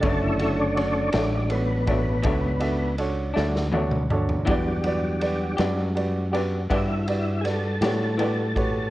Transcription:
0.00 1.11 F#1 medium
0.00 0.26 B2 medium
0.00 1.10 D3 medium
0.00 1.10 A3 medium
0.00 1.11 C#4 medium
0.00 0.30 D4 medium
0.00 0.30 F#4 medium
0.00 0.20 A4 medium
0.00 0.30 A4 medium
0.00 0.31 C#5 medium
0.00 kick loud
0.00 ride medium
0.05 0.26 F#3 medium
0.05 0.26 A3 medium
0.05 0.27 D4 medium
0.22 0.58 E4 medium
0.38 0.67 D4 medium
0.38 0.67 F#4 medium
0.38 0.68 A4 soft
0.38 0.68 C#5 medium
0.38 ride medium
0.60 0.95 D4 medium
0.75 1.04 D4 medium
0.75 1.04 F#4 soft
0.75 1.04 A4 soft
0.75 1.05 C#5 medium
0.75 ride medium
0.96 1.50 D4 medium
1.12 2.22 A1 medium
1.12 1.37 A3 soft
1.12 1.41 D4 medium
1.12 1.36 D4 medium
1.12 1.41 F#4 medium
1.12 1.42 A4 medium
1.12 1.42 C#5 medium
1.12 snare loud
1.12 ride medium
1.17 1.38 F#3 soft
1.49 2.96 B3 medium
1.49 1.78 D4 medium
1.49 1.78 F#4 soft
1.49 1.79 A4 soft
1.49 1.79 C#5 medium
1.49 ride medium
1.87 2.11 A3 soft
1.87 2.15 D4 medium
1.87 2.11 D4 soft
1.87 2.16 F#4 soft
1.87 2.16 A4 soft
1.87 2.16 C#5 medium
1.87 kick medium
1.87 ride medium
1.91 2.12 F#3 soft
2.23 3.33 C#2 medium
2.23 2.46 B2 medium
2.23 2.47 F#3 medium
2.23 2.47 A3 medium
2.23 2.47 D4 medium
2.23 2.53 D4 medium
2.23 2.53 F#4 soft
2.23 2.53 A4 soft
2.23 2.54 C#5 medium
2.23 kick medium
2.23 ride medium
2.60 2.89 D4 medium
2.60 2.89 F#4 medium
2.60 2.90 A4 medium
2.60 2.90 E5 medium
2.60 ride medium
2.98 3.27 D4 medium
2.98 3.27 F#4 medium
2.98 3.27 A4 medium
2.98 3.28 C#5 medium
2.98 ride medium
3.34 4.45 D2 medium
3.34 3.59 F#3 soft
3.34 3.58 A3 soft
3.34 3.58 D4 medium
3.34 3.64 D4 medium
3.34 3.64 F#4 medium
3.34 3.64 A4 medium
3.34 3.65 D5 medium
3.34 snare medium
3.56 snare medium
3.72 3.95 B2 medium
3.72 3.96 F#3 medium
3.72 3.96 A3 medium
3.72 4.01 D4 medium
3.72 3.96 D4 medium
3.72 4.01 F#4 medium
3.72 4.02 A4 medium
3.72 4.02 C#5 medium
3.72 4.08 F#5 medium
3.72 high tom medium
3.91 mid tom medium
4.10 4.39 D4 medium
4.10 4.39 F#4 medium
4.10 4.39 A4 medium
4.10 4.39 C#5 medium
4.10 4.46 A5 medium
4.10 mid tom medium
4.29 floor tom medium
4.45 5.56 E2 medium
4.45 4.69 E3 medium
4.45 5.56 G3 medium
4.45 4.69 B3 medium
4.45 4.70 D4 medium
4.45 4.76 F#4 medium
4.45 4.70 G4 medium
4.45 4.76 G4 medium
4.45 kick loud
4.45 ride medium
4.49 5.56 F#3 medium
4.49 5.56 D4 medium
4.49 4.76 B4 medium
4.49 4.77 D5 medium
4.84 5.12 F#4 medium
4.84 5.13 G4 medium
4.84 5.13 B4 medium
4.84 5.14 D5 medium
4.84 ride medium
5.21 5.49 F#4 medium
5.21 5.49 G4 medium
5.21 5.50 B4 medium
5.21 5.50 D5 medium
5.21 ride medium
5.57 6.67 F#2 medium
5.57 5.82 B3 soft
5.57 5.82 D4 soft
5.57 5.86 F#4 medium
5.57 5.80 G4 medium
5.57 5.87 G4 medium
5.57 5.87 B4 medium
5.57 5.87 D5 medium
5.57 snare loud
5.57 ride medium
5.95 6.24 F#4 medium
5.95 6.24 G4 medium
5.95 6.24 B4 medium
5.95 6.24 D5 medium
5.95 ride medium
6.31 6.56 D4 soft
6.31 6.60 F#4 medium
6.31 6.61 G4 medium
6.31 6.56 G4 medium
6.31 6.61 B4 medium
6.31 6.61 D5 medium
6.31 ride medium
6.36 6.57 B3 medium
6.70 7.79 G2 medium
6.70 6.92 E3 medium
6.70 6.92 B3 medium
6.70 6.93 D4 medium
6.70 7.07 E4 medium
6.70 6.99 F#4 medium
6.70 6.98 G4 medium
6.70 6.93 G4 medium
6.70 6.99 B4 soft
6.70 6.99 D5 medium
6.70 kick medium
6.70 ride medium
7.07 7.45 E4 medium
7.07 7.35 F#4 medium
7.07 7.35 G4 soft
7.07 7.36 B4 soft
7.07 7.36 D5 medium
7.07 ride medium
7.41 7.72 F#4 medium
7.41 7.72 G4 medium
7.41 7.45 G#4 medium
7.41 7.72 B4 soft
7.41 ride medium
7.45 8.90 A4 medium
7.45 7.73 D5 medium
7.45 snare soft
7.81 8.89 A2 medium
7.81 8.05 D4 soft
7.81 8.09 F#4 medium
7.81 8.10 G4 soft
7.81 8.04 G4 soft
7.81 8.10 B4 medium
7.81 8.10 C#5 medium
7.81 snare loud
7.81 ride medium
7.85 8.06 B3 soft
8.18 8.40 E3 medium
8.18 8.41 B3 medium
8.18 8.42 D4 medium
8.18 8.47 F#4 medium
8.18 8.47 G4 soft
8.18 8.42 G4 medium
8.18 8.47 B4 soft
8.18 8.48 D5 medium
8.18 ride medium
8.55 8.84 F#4 medium
8.55 8.83 G4 medium
8.55 8.84 B4 medium
8.55 8.84 C#5 medium
8.55 kick medium
8.55 ride medium

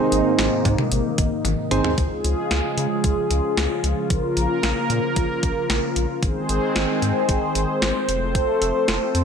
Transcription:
0.00 1.94 G#2 medium
0.00 1.94 C3 medium
0.00 1.94 D#3 medium
0.00 1.96 A#3 medium
0.00 0.68 C4 medium
0.00 0.68 D#4 medium
0.00 1.94 D#4 medium
0.00 0.68 G#4 medium
0.00 0.68 C5 loud
0.12 0.22 G#1 loud
0.12 closed hi-hat medium
0.39 0.49 G#1 loud
0.39 snare loud
0.39 closed hi-hat medium
0.65 0.75 G#2 loud
0.65 kick medium
0.65 closed hi-hat medium
0.65 cowbell medium
0.78 mid tom medium
0.92 1.02 G#1 loud
0.92 closed hi-hat medium
1.18 1.28 G#1 loud
1.18 kick loud
1.18 closed hi-hat medium
1.45 1.55 G#1 loud
1.45 closed hi-hat medium
1.45 high tom medium
1.71 1.81 G#1 loud
1.71 1.92 C4 medium
1.71 1.92 D#4 medium
1.71 1.92 G#4 medium
1.71 1.92 C5 loud
1.71 closed hi-hat medium
1.71 mid tom loud
1.84 floor tom medium
1.98 2.08 C#2 loud
1.98 6.19 C#3 medium
1.98 6.19 F3 medium
1.98 4.08 G#3 medium
1.98 6.19 F4 medium
1.98 4.08 G#4 medium
1.98 kick loud
1.98 closed hi-hat medium
2.24 2.34 C#2 loud
2.24 closed hi-hat medium
2.51 2.61 C#2 loud
2.51 snare loud
2.51 closed hi-hat medium
2.77 2.87 C#3 loud
2.77 closed hi-hat medium
3.04 3.14 C#2 loud
3.04 kick medium
3.04 closed hi-hat medium
3.31 3.41 C#2 loud
3.31 closed hi-hat medium
3.57 3.67 C#2 loud
3.57 snare loud
3.57 closed hi-hat medium
3.84 3.94 C#2 loud
3.84 closed hi-hat medium
4.10 4.20 A#1 loud
4.10 6.20 A#3 medium
4.10 6.20 A#4 medium
4.10 kick loud
4.10 closed hi-hat medium
4.37 4.47 A#1 medium
4.37 closed hi-hat medium
4.63 4.73 A#1 medium
4.63 snare loud
4.63 closed hi-hat medium
4.90 5.00 A#2 loud
4.90 closed hi-hat medium
5.16 5.26 A#1 loud
5.16 kick medium
5.16 closed hi-hat medium
5.43 5.53 A#1 loud
5.43 kick medium
5.43 closed hi-hat medium
5.70 5.80 A#1 loud
5.70 snare loud
5.70 closed hi-hat medium
5.96 6.06 A#1 loud
5.96 closed hi-hat medium
6.23 6.33 G#1 loud
6.23 8.07 D#3 medium
6.23 8.07 G#3 medium
6.23 8.07 C4 medium
6.23 8.07 G#4 medium
6.23 9.24 C5 medium
6.23 kick loud
6.23 closed hi-hat medium
6.49 6.59 G#1 loud
6.49 closed hi-hat medium
6.76 6.86 G#1 loud
6.76 snare loud
6.76 closed hi-hat medium
7.02 7.12 G#2 loud
7.02 closed hi-hat medium
7.29 7.39 G#1 loud
7.29 kick medium
7.29 closed hi-hat medium
7.55 7.65 G#1 loud
7.55 closed hi-hat medium
7.82 7.92 G#1 loud
7.82 snare loud
7.82 closed hi-hat medium
8.08 8.38 F1 loud
8.08 9.24 F3 medium
8.08 9.24 A3 medium
8.08 9.24 C4 medium
8.08 9.24 A4 medium
8.08 closed hi-hat medium
8.35 kick loud
8.35 closed hi-hat medium
8.62 8.72 F1 medium
8.62 closed hi-hat medium
8.88 8.98 F1 loud
8.88 snare loud
8.88 closed hi-hat medium
9.15 9.24 F2 loud
9.15 closed hi-hat medium

